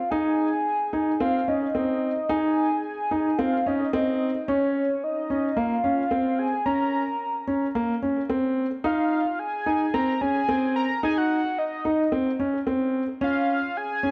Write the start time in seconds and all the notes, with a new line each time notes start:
Already playing: F5
0.11 D#4 G#5
0.93 D#4
1.20 C4 F5
1.48 C#4 D#5
1.75 C4
2.29 D#4 G#5
3.11 D#4
3.38 C4 F5
3.66 C#4 D#5
3.93 C4
4.48 C#4 C#5
5.04 D#5
5.30 C#4
5.57 A#3 F5
5.84 C#4
6.11 C4
6.39 G#5
6.66 C#4 A#5
7.47 C#4
7.75 A#3
8.02 C#4
8.30 C4
8.84 D#4 F5
9.39 G#5
9.66 D#4
9.94 C4 A#5
10.21 C#4 G#5
10.49 C4
10.76 A#5
11.03 D#4 G#5
11.18 F#5
11.58 D#5
11.85 D#4
12.12 C4
12.40 C#4
12.67 C4
13.21 C#4 F5
13.77 G#5
14.03 C#4